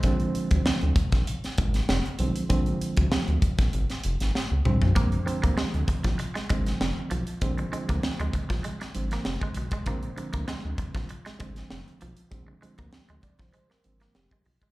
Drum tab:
HH |xxxx-xxxxxxx-xxx|xxxx-xxxxxxx----|xxxx-xxxxxxx--xx|xxxx-xxxxxxx--xx|
SD |----o--o-o-oo---|----o--o-o-oo---|----o--o-o-oo---|----o--o-o-oo---|
T2 |----------------|--------------o-|----------------|----------------|
FT |----------------|---------------o|----------------|----------------|
BD |o--o--oo--o-----|o--o--oo--------|o--o--oo--o-----|o--o--oo-----o-o|

HH |xxxx--xxxxxx-xxx|x-xx-xxxx-xx-xox|
SD |----o--o-o-oo---|----o--o-o-oo---|
T2 |----------------|----------------|
FT |----------------|----------------|
BD |o--o--oo--o-----|o--o--oo-----o-o|